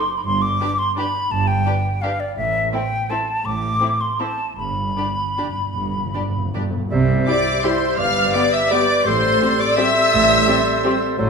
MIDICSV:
0, 0, Header, 1, 13, 480
1, 0, Start_track
1, 0, Tempo, 349040
1, 348, Time_signature, 3, 2, 24, 8
1, 2279, Tempo, 358852
1, 5159, Tempo, 388853
1, 8999, Tempo, 354820
1, 14920, End_track
2, 0, Start_track
2, 0, Title_t, "Flute"
2, 0, Program_c, 0, 73
2, 0, Note_on_c, 0, 84, 75
2, 238, Note_on_c, 0, 83, 73
2, 259, Note_off_c, 0, 84, 0
2, 337, Note_off_c, 0, 83, 0
2, 346, Note_on_c, 0, 84, 90
2, 574, Note_on_c, 0, 86, 91
2, 595, Note_off_c, 0, 84, 0
2, 1081, Note_on_c, 0, 84, 88
2, 1101, Note_off_c, 0, 86, 0
2, 1313, Note_off_c, 0, 84, 0
2, 1321, Note_on_c, 0, 83, 88
2, 1806, Note_on_c, 0, 81, 89
2, 1827, Note_off_c, 0, 83, 0
2, 2026, Note_on_c, 0, 79, 83
2, 2047, Note_off_c, 0, 81, 0
2, 2758, Note_on_c, 0, 77, 83
2, 2778, Note_off_c, 0, 79, 0
2, 3005, Note_on_c, 0, 74, 74
2, 3025, Note_off_c, 0, 77, 0
2, 3220, Note_off_c, 0, 74, 0
2, 3228, Note_on_c, 0, 76, 78
2, 3698, Note_off_c, 0, 76, 0
2, 3720, Note_on_c, 0, 79, 83
2, 4211, Note_on_c, 0, 81, 74
2, 4231, Note_off_c, 0, 79, 0
2, 4682, Note_on_c, 0, 86, 87
2, 4702, Note_off_c, 0, 81, 0
2, 5402, Note_on_c, 0, 84, 68
2, 5421, Note_off_c, 0, 86, 0
2, 5643, Note_on_c, 0, 81, 71
2, 5662, Note_off_c, 0, 84, 0
2, 6098, Note_off_c, 0, 81, 0
2, 6105, Note_on_c, 0, 83, 69
2, 8482, Note_off_c, 0, 83, 0
2, 9468, Note_on_c, 0, 74, 80
2, 9932, Note_off_c, 0, 74, 0
2, 9956, Note_on_c, 0, 72, 64
2, 10435, Note_on_c, 0, 77, 78
2, 10456, Note_off_c, 0, 72, 0
2, 10928, Note_on_c, 0, 74, 75
2, 10949, Note_off_c, 0, 77, 0
2, 11176, Note_on_c, 0, 76, 75
2, 11196, Note_off_c, 0, 74, 0
2, 11431, Note_on_c, 0, 74, 78
2, 11451, Note_off_c, 0, 76, 0
2, 11899, Note_on_c, 0, 72, 77
2, 11919, Note_off_c, 0, 74, 0
2, 12615, Note_on_c, 0, 74, 79
2, 12635, Note_off_c, 0, 72, 0
2, 12852, Note_on_c, 0, 76, 85
2, 12872, Note_off_c, 0, 74, 0
2, 14530, Note_off_c, 0, 76, 0
2, 14920, End_track
3, 0, Start_track
3, 0, Title_t, "Oboe"
3, 0, Program_c, 1, 68
3, 8994, Note_on_c, 1, 76, 64
3, 9916, Note_off_c, 1, 76, 0
3, 9964, Note_on_c, 1, 76, 60
3, 10437, Note_on_c, 1, 74, 63
3, 10457, Note_off_c, 1, 76, 0
3, 11409, Note_off_c, 1, 74, 0
3, 11417, Note_on_c, 1, 74, 65
3, 11886, Note_on_c, 1, 72, 63
3, 11906, Note_off_c, 1, 74, 0
3, 12847, Note_off_c, 1, 72, 0
3, 12855, Note_on_c, 1, 72, 70
3, 14723, Note_off_c, 1, 72, 0
3, 14769, Note_on_c, 1, 72, 68
3, 14920, Note_off_c, 1, 72, 0
3, 14920, End_track
4, 0, Start_track
4, 0, Title_t, "Trumpet section"
4, 0, Program_c, 2, 61
4, 9475, Note_on_c, 2, 74, 75
4, 9935, Note_off_c, 2, 74, 0
4, 9975, Note_on_c, 2, 72, 68
4, 10445, Note_off_c, 2, 72, 0
4, 10445, Note_on_c, 2, 77, 81
4, 10925, Note_off_c, 2, 77, 0
4, 10925, Note_on_c, 2, 74, 73
4, 11176, Note_off_c, 2, 74, 0
4, 11179, Note_on_c, 2, 76, 76
4, 11288, Note_off_c, 2, 76, 0
4, 11426, Note_on_c, 2, 74, 84
4, 11882, Note_off_c, 2, 74, 0
4, 11899, Note_on_c, 2, 72, 77
4, 12625, Note_off_c, 2, 72, 0
4, 12626, Note_on_c, 2, 74, 73
4, 12865, Note_off_c, 2, 74, 0
4, 12866, Note_on_c, 2, 76, 92
4, 14537, Note_off_c, 2, 76, 0
4, 14920, End_track
5, 0, Start_track
5, 0, Title_t, "Violin section"
5, 0, Program_c, 3, 48
5, 846, Note_on_c, 3, 71, 46
5, 956, Note_off_c, 3, 71, 0
5, 1345, Note_on_c, 3, 71, 55
5, 1455, Note_off_c, 3, 71, 0
5, 2285, Note_on_c, 3, 71, 49
5, 2392, Note_off_c, 3, 71, 0
5, 2778, Note_on_c, 3, 71, 55
5, 2885, Note_off_c, 3, 71, 0
5, 3717, Note_on_c, 3, 69, 46
5, 3824, Note_off_c, 3, 69, 0
5, 4212, Note_on_c, 3, 69, 52
5, 4319, Note_off_c, 3, 69, 0
5, 5152, Note_on_c, 3, 69, 42
5, 5251, Note_off_c, 3, 69, 0
5, 5630, Note_on_c, 3, 69, 47
5, 5728, Note_off_c, 3, 69, 0
5, 6604, Note_on_c, 3, 74, 39
5, 6702, Note_off_c, 3, 74, 0
5, 7096, Note_on_c, 3, 74, 43
5, 7195, Note_off_c, 3, 74, 0
5, 8038, Note_on_c, 3, 74, 36
5, 8136, Note_off_c, 3, 74, 0
5, 8532, Note_on_c, 3, 74, 39
5, 8631, Note_off_c, 3, 74, 0
5, 9477, Note_on_c, 3, 86, 81
5, 9936, Note_off_c, 3, 86, 0
5, 9963, Note_on_c, 3, 84, 69
5, 10422, Note_on_c, 3, 89, 86
5, 10439, Note_off_c, 3, 84, 0
5, 10903, Note_off_c, 3, 89, 0
5, 10916, Note_on_c, 3, 86, 78
5, 11166, Note_off_c, 3, 86, 0
5, 11175, Note_on_c, 3, 88, 85
5, 11317, Note_off_c, 3, 88, 0
5, 11333, Note_on_c, 3, 88, 56
5, 11423, Note_on_c, 3, 86, 85
5, 11424, Note_off_c, 3, 88, 0
5, 11773, Note_off_c, 3, 86, 0
5, 11789, Note_on_c, 3, 86, 63
5, 11880, Note_on_c, 3, 84, 88
5, 11884, Note_off_c, 3, 86, 0
5, 12615, Note_off_c, 3, 84, 0
5, 12619, Note_on_c, 3, 86, 84
5, 12861, Note_off_c, 3, 86, 0
5, 12861, Note_on_c, 3, 88, 100
5, 14535, Note_off_c, 3, 88, 0
5, 14920, End_track
6, 0, Start_track
6, 0, Title_t, "Clarinet"
6, 0, Program_c, 4, 71
6, 8991, Note_on_c, 4, 72, 62
6, 9914, Note_off_c, 4, 72, 0
6, 9967, Note_on_c, 4, 72, 59
6, 10450, Note_on_c, 4, 71, 61
6, 10470, Note_off_c, 4, 72, 0
6, 11404, Note_off_c, 4, 71, 0
6, 11412, Note_on_c, 4, 71, 61
6, 11875, Note_off_c, 4, 71, 0
6, 11897, Note_on_c, 4, 69, 67
6, 12846, Note_off_c, 4, 69, 0
6, 12854, Note_on_c, 4, 69, 62
6, 14723, Note_off_c, 4, 69, 0
6, 14763, Note_on_c, 4, 69, 67
6, 14920, Note_off_c, 4, 69, 0
6, 14920, End_track
7, 0, Start_track
7, 0, Title_t, "Violin section"
7, 0, Program_c, 5, 48
7, 843, Note_on_c, 5, 67, 51
7, 953, Note_off_c, 5, 67, 0
7, 1345, Note_on_c, 5, 67, 53
7, 1455, Note_off_c, 5, 67, 0
7, 2289, Note_on_c, 5, 67, 53
7, 2396, Note_off_c, 5, 67, 0
7, 2775, Note_on_c, 5, 67, 57
7, 2882, Note_off_c, 5, 67, 0
7, 3711, Note_on_c, 5, 64, 49
7, 3818, Note_off_c, 5, 64, 0
7, 4216, Note_on_c, 5, 64, 49
7, 4323, Note_off_c, 5, 64, 0
7, 5162, Note_on_c, 5, 64, 45
7, 5261, Note_off_c, 5, 64, 0
7, 5636, Note_on_c, 5, 64, 46
7, 5734, Note_off_c, 5, 64, 0
7, 6599, Note_on_c, 5, 67, 41
7, 6698, Note_off_c, 5, 67, 0
7, 7099, Note_on_c, 5, 67, 42
7, 7198, Note_off_c, 5, 67, 0
7, 8037, Note_on_c, 5, 67, 37
7, 8135, Note_off_c, 5, 67, 0
7, 8531, Note_on_c, 5, 67, 41
7, 8630, Note_off_c, 5, 67, 0
7, 9482, Note_on_c, 5, 74, 75
7, 9939, Note_off_c, 5, 74, 0
7, 9969, Note_on_c, 5, 72, 67
7, 10436, Note_on_c, 5, 77, 80
7, 10442, Note_off_c, 5, 72, 0
7, 10920, Note_off_c, 5, 77, 0
7, 10928, Note_on_c, 5, 74, 73
7, 11175, Note_on_c, 5, 76, 72
7, 11177, Note_off_c, 5, 74, 0
7, 11420, Note_off_c, 5, 76, 0
7, 11428, Note_on_c, 5, 74, 76
7, 11890, Note_on_c, 5, 72, 72
7, 11892, Note_off_c, 5, 74, 0
7, 12605, Note_off_c, 5, 72, 0
7, 12615, Note_on_c, 5, 74, 69
7, 12860, Note_off_c, 5, 74, 0
7, 12871, Note_on_c, 5, 76, 80
7, 14540, Note_off_c, 5, 76, 0
7, 14920, End_track
8, 0, Start_track
8, 0, Title_t, "Viola section"
8, 0, Program_c, 6, 48
8, 838, Note_on_c, 6, 62, 53
8, 948, Note_off_c, 6, 62, 0
8, 1337, Note_on_c, 6, 62, 54
8, 1447, Note_off_c, 6, 62, 0
8, 2275, Note_on_c, 6, 62, 50
8, 2383, Note_off_c, 6, 62, 0
8, 2776, Note_on_c, 6, 62, 53
8, 2883, Note_off_c, 6, 62, 0
8, 3718, Note_on_c, 6, 60, 52
8, 3825, Note_off_c, 6, 60, 0
8, 4211, Note_on_c, 6, 60, 50
8, 4318, Note_off_c, 6, 60, 0
8, 5148, Note_on_c, 6, 60, 44
8, 5248, Note_off_c, 6, 60, 0
8, 5632, Note_on_c, 6, 60, 47
8, 5730, Note_off_c, 6, 60, 0
8, 6588, Note_on_c, 6, 62, 41
8, 6687, Note_off_c, 6, 62, 0
8, 7086, Note_on_c, 6, 62, 42
8, 7185, Note_off_c, 6, 62, 0
8, 8038, Note_on_c, 6, 62, 39
8, 8136, Note_off_c, 6, 62, 0
8, 8531, Note_on_c, 6, 62, 38
8, 8630, Note_off_c, 6, 62, 0
8, 9476, Note_on_c, 6, 67, 54
8, 9480, Note_on_c, 6, 64, 55
8, 9584, Note_off_c, 6, 67, 0
8, 9588, Note_off_c, 6, 64, 0
8, 9964, Note_on_c, 6, 67, 57
8, 9966, Note_on_c, 6, 64, 57
8, 10072, Note_off_c, 6, 67, 0
8, 10074, Note_off_c, 6, 64, 0
8, 10929, Note_on_c, 6, 59, 54
8, 10931, Note_on_c, 6, 67, 56
8, 11037, Note_off_c, 6, 59, 0
8, 11039, Note_off_c, 6, 67, 0
8, 11427, Note_on_c, 6, 59, 60
8, 11430, Note_on_c, 6, 67, 59
8, 11535, Note_off_c, 6, 59, 0
8, 11538, Note_off_c, 6, 67, 0
8, 12376, Note_on_c, 6, 67, 55
8, 12377, Note_on_c, 6, 60, 52
8, 12484, Note_off_c, 6, 67, 0
8, 12485, Note_off_c, 6, 60, 0
8, 12863, Note_on_c, 6, 60, 62
8, 12864, Note_on_c, 6, 67, 62
8, 12971, Note_off_c, 6, 60, 0
8, 12972, Note_off_c, 6, 67, 0
8, 13801, Note_on_c, 6, 60, 56
8, 13803, Note_on_c, 6, 67, 62
8, 13909, Note_off_c, 6, 60, 0
8, 13911, Note_off_c, 6, 67, 0
8, 14299, Note_on_c, 6, 60, 63
8, 14305, Note_on_c, 6, 67, 64
8, 14408, Note_off_c, 6, 60, 0
8, 14413, Note_off_c, 6, 67, 0
8, 14920, End_track
9, 0, Start_track
9, 0, Title_t, "French horn section"
9, 0, Program_c, 7, 60
9, 9471, Note_on_c, 7, 55, 55
9, 9472, Note_on_c, 7, 64, 51
9, 9651, Note_off_c, 7, 55, 0
9, 9651, Note_off_c, 7, 64, 0
9, 9968, Note_on_c, 7, 64, 56
9, 9971, Note_on_c, 7, 55, 59
9, 10140, Note_off_c, 7, 64, 0
9, 10142, Note_off_c, 7, 55, 0
9, 10927, Note_on_c, 7, 59, 53
9, 10932, Note_on_c, 7, 55, 58
9, 11106, Note_off_c, 7, 59, 0
9, 11110, Note_off_c, 7, 55, 0
9, 11409, Note_on_c, 7, 55, 60
9, 11412, Note_on_c, 7, 59, 63
9, 11581, Note_off_c, 7, 55, 0
9, 11583, Note_off_c, 7, 59, 0
9, 12366, Note_on_c, 7, 55, 56
9, 12367, Note_on_c, 7, 60, 57
9, 12544, Note_off_c, 7, 55, 0
9, 12545, Note_off_c, 7, 60, 0
9, 12850, Note_on_c, 7, 60, 65
9, 12859, Note_on_c, 7, 55, 62
9, 13021, Note_off_c, 7, 60, 0
9, 13028, Note_off_c, 7, 55, 0
9, 13804, Note_on_c, 7, 60, 60
9, 13816, Note_on_c, 7, 55, 58
9, 13982, Note_off_c, 7, 60, 0
9, 13991, Note_off_c, 7, 55, 0
9, 14309, Note_on_c, 7, 55, 64
9, 14313, Note_on_c, 7, 60, 62
9, 14476, Note_off_c, 7, 55, 0
9, 14479, Note_off_c, 7, 60, 0
9, 14920, End_track
10, 0, Start_track
10, 0, Title_t, "Bassoon"
10, 0, Program_c, 8, 70
10, 8986, Note_on_c, 8, 55, 59
10, 9912, Note_off_c, 8, 55, 0
10, 9969, Note_on_c, 8, 55, 67
10, 10432, Note_off_c, 8, 55, 0
10, 10441, Note_on_c, 8, 55, 64
10, 11400, Note_off_c, 8, 55, 0
10, 11410, Note_on_c, 8, 55, 65
10, 11870, Note_off_c, 8, 55, 0
10, 11879, Note_on_c, 8, 55, 60
10, 12837, Note_off_c, 8, 55, 0
10, 12850, Note_on_c, 8, 55, 76
10, 14720, Note_off_c, 8, 55, 0
10, 14761, Note_on_c, 8, 54, 67
10, 14920, Note_off_c, 8, 54, 0
10, 14920, End_track
11, 0, Start_track
11, 0, Title_t, "Cello section"
11, 0, Program_c, 10, 48
11, 355, Note_on_c, 10, 43, 64
11, 749, Note_off_c, 10, 43, 0
11, 1807, Note_on_c, 10, 43, 69
11, 2197, Note_off_c, 10, 43, 0
11, 3245, Note_on_c, 10, 45, 63
11, 3633, Note_off_c, 10, 45, 0
11, 4682, Note_on_c, 10, 45, 58
11, 5075, Note_off_c, 10, 45, 0
11, 6103, Note_on_c, 10, 43, 54
11, 6511, Note_off_c, 10, 43, 0
11, 7559, Note_on_c, 10, 43, 54
11, 7953, Note_off_c, 10, 43, 0
11, 8990, Note_on_c, 10, 48, 69
11, 9391, Note_off_c, 10, 48, 0
11, 10443, Note_on_c, 10, 43, 69
11, 10840, Note_off_c, 10, 43, 0
11, 11895, Note_on_c, 10, 45, 70
11, 12292, Note_off_c, 10, 45, 0
11, 13327, Note_on_c, 10, 45, 74
11, 13716, Note_off_c, 10, 45, 0
11, 14761, Note_on_c, 10, 45, 80
11, 14920, Note_off_c, 10, 45, 0
11, 14920, End_track
12, 0, Start_track
12, 0, Title_t, "Timpani"
12, 0, Program_c, 11, 47
12, 6101, Note_on_c, 11, 43, 30
12, 6183, Note_off_c, 11, 43, 0
12, 6198, Note_on_c, 11, 43, 29
12, 6279, Note_off_c, 11, 43, 0
12, 6294, Note_on_c, 11, 43, 30
12, 6387, Note_off_c, 11, 43, 0
12, 6402, Note_on_c, 11, 43, 30
12, 6495, Note_off_c, 11, 43, 0
12, 6621, Note_on_c, 11, 43, 31
12, 6717, Note_off_c, 11, 43, 0
12, 6730, Note_on_c, 11, 43, 32
12, 6817, Note_off_c, 11, 43, 0
12, 6831, Note_on_c, 11, 43, 37
12, 6918, Note_off_c, 11, 43, 0
12, 6933, Note_on_c, 11, 43, 34
12, 7022, Note_off_c, 11, 43, 0
12, 7037, Note_on_c, 11, 43, 37
12, 7127, Note_off_c, 11, 43, 0
12, 7141, Note_on_c, 11, 43, 38
12, 7223, Note_off_c, 11, 43, 0
12, 7238, Note_on_c, 11, 43, 37
12, 7322, Note_off_c, 11, 43, 0
12, 7337, Note_on_c, 11, 43, 41
12, 7422, Note_off_c, 11, 43, 0
12, 7435, Note_on_c, 11, 43, 41
12, 7513, Note_off_c, 11, 43, 0
12, 7528, Note_on_c, 11, 43, 46
12, 7611, Note_off_c, 11, 43, 0
12, 7628, Note_on_c, 11, 43, 46
12, 7697, Note_off_c, 11, 43, 0
12, 7712, Note_on_c, 11, 43, 50
12, 7793, Note_off_c, 11, 43, 0
12, 7808, Note_on_c, 11, 43, 54
12, 7900, Note_off_c, 11, 43, 0
12, 7918, Note_on_c, 11, 43, 55
12, 8007, Note_off_c, 11, 43, 0
12, 8020, Note_on_c, 11, 43, 56
12, 8104, Note_off_c, 11, 43, 0
12, 8118, Note_on_c, 11, 43, 53
12, 8202, Note_off_c, 11, 43, 0
12, 8217, Note_on_c, 11, 43, 65
12, 8301, Note_off_c, 11, 43, 0
12, 8316, Note_on_c, 11, 43, 61
12, 8407, Note_off_c, 11, 43, 0
12, 8422, Note_on_c, 11, 43, 65
12, 8516, Note_off_c, 11, 43, 0
12, 8529, Note_on_c, 11, 43, 66
12, 8604, Note_off_c, 11, 43, 0
12, 8618, Note_on_c, 11, 43, 72
12, 8708, Note_off_c, 11, 43, 0
12, 8723, Note_on_c, 11, 43, 71
12, 8797, Note_off_c, 11, 43, 0
12, 8812, Note_on_c, 11, 43, 72
12, 8904, Note_off_c, 11, 43, 0
12, 14920, End_track
13, 0, Start_track
13, 0, Title_t, "Double bass section"
13, 0, Program_c, 12, 48
13, 354, Note_on_c, 12, 31, 64
13, 748, Note_off_c, 12, 31, 0
13, 1804, Note_on_c, 12, 31, 67
13, 2196, Note_off_c, 12, 31, 0
13, 3238, Note_on_c, 12, 33, 64
13, 3629, Note_off_c, 12, 33, 0
13, 4682, Note_on_c, 12, 33, 61
13, 5075, Note_off_c, 12, 33, 0
13, 6098, Note_on_c, 12, 31, 58
13, 6508, Note_off_c, 12, 31, 0
13, 7558, Note_on_c, 12, 31, 53
13, 7952, Note_off_c, 12, 31, 0
13, 9003, Note_on_c, 12, 36, 70
13, 9398, Note_off_c, 12, 36, 0
13, 10447, Note_on_c, 12, 31, 66
13, 10842, Note_off_c, 12, 31, 0
13, 11891, Note_on_c, 12, 33, 74
13, 12290, Note_off_c, 12, 33, 0
13, 13328, Note_on_c, 12, 33, 79
13, 13717, Note_off_c, 12, 33, 0
13, 14765, Note_on_c, 12, 33, 78
13, 14920, Note_off_c, 12, 33, 0
13, 14920, End_track
0, 0, End_of_file